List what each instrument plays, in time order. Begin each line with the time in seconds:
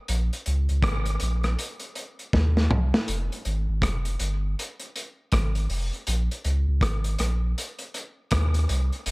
0.08 sub bass A#1, closed hi-hat
0.33 closed hi-hat
0.46 sub bass C#2, closed hi-hat
0.69 sub bass C#2, closed hi-hat
0.83 sub bass G#1, kick, cross-stick, closed hi-hat
1.06 closed hi-hat
1.20 sub bass A#1, closed hi-hat
1.43 cross-stick, closed hi-hat
1.59 closed hi-hat
1.80 closed hi-hat
1.95 closed hi-hat
2.19 closed hi-hat
2.33 sub bass D#2, kick, snare
2.57 snare
2.71 sub bass C2, mid tom
2.94 snare
3.08 sub bass F1, closed hi-hat
3.32 closed hi-hat
3.45 sub bass G#1, closed hi-hat
3.69 sub bass G#1
3.82 sub bass F1, kick, cross-stick, closed hi-hat
4.05 closed hi-hat
4.19 sub bass G1, closed hi-hat
4.59 closed hi-hat
4.80 closed hi-hat
4.96 closed hi-hat
5.32 sub bass G#1, kick, cross-stick, closed hi-hat
5.55 closed hi-hat
5.70 sub bass F1, open hi-hat
5.93 closed hi-hat
6.07 sub bass A#1, closed hi-hat
6.31 closed hi-hat
6.44 sub bass C#2, closed hi-hat
6.68 sub bass C#2
6.81 sub bass G#1, kick, cross-stick, closed hi-hat
7.04 closed hi-hat
7.19 sub bass A#1, cross-stick, closed hi-hat
7.58 closed hi-hat
7.79 closed hi-hat
7.94 closed hi-hat
8.31 sub bass D#2, kick, cross-stick, closed hi-hat
8.54 closed hi-hat
8.69 sub bass C2, closed hi-hat
8.93 closed hi-hat
9.06 sub bass F1, closed hi-hat